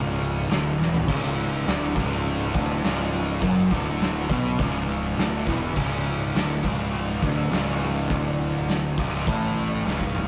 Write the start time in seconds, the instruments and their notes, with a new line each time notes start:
Already playing: picked electric bass C#1, distorted electric guitar C#2 C#3
0.09 snare
0.21 open hi-hat
0.49 picked electric bass D1, distorted electric guitar D2 D3, snare, open hi-hat
0.79 picked electric bass E1, distorted electric guitar E2 E3, snare
0.94 floor tom
1.08 picked electric bass C#1, distorted electric guitar C#2 C#3, kick, splash, crash
1.38 open hi-hat
1.67 picked electric bass D1, distorted electric guitar D2 D3, snare, open hi-hat
1.96 picked electric bass C#1, distorted electric guitar C#2 C#3, kick, open hi-hat
2.25 open hi-hat
2.42 snare
2.54 picked electric bass D1, distorted electric guitar D2 D3, kick, open hi-hat
2.83 picked electric bass C#1, distorted electric guitar C#2 C#3, snare, open hi-hat
3.13 open hi-hat
3.42 picked electric bass F#1, distorted electric guitar F#2 F#3, kick, open hi-hat
3.71 picked electric bass D1, distorted electric guitar D2 D3, kick, open hi-hat
4.00 snare, open hi-hat
4.30 picked electric bass B1, distorted electric guitar B2 B3, kick, open hi-hat
4.59 picked electric bass C#1, distorted electric guitar C#2 C#3, kick, open hi-hat
4.76 snare
4.89 open hi-hat
5.18 picked electric bass D1, distorted electric guitar D2 D3, snare, open hi-hat
5.47 picked electric bass E1, distorted electric guitar E2 E3, kick, snare, open hi-hat
5.76 picked electric bass C#1, distorted electric guitar C#2 C#3, kick, crash
6.06 open hi-hat
6.35 picked electric bass D1, distorted electric guitar D2 D3, snare, open hi-hat
6.64 picked electric bass C#1, distorted electric guitar C#2 C#3, kick, open hi-hat
6.93 open hi-hat
7.10 snare
7.22 picked electric bass D1, distorted electric guitar D2 D3, kick, open hi-hat
7.51 picked electric bass C#1, distorted electric guitar C#2 C#3, snare, open hi-hat
7.81 snare, open hi-hat
8.10 picked electric bass D1, distorted electric guitar D2 D3, kick, open hi-hat
8.39 open hi-hat
8.68 snare, open hi-hat
8.97 picked electric bass C#1, distorted electric guitar C#2 C#3, kick, open hi-hat
9.27 picked electric bass A1, distorted electric guitar A2 A3, kick, open hi-hat
9.44 snare
9.56 open hi-hat
9.85 picked electric bass C#1, distorted electric guitar C#2 C#3, snare
10.01 kick
10.15 mid tom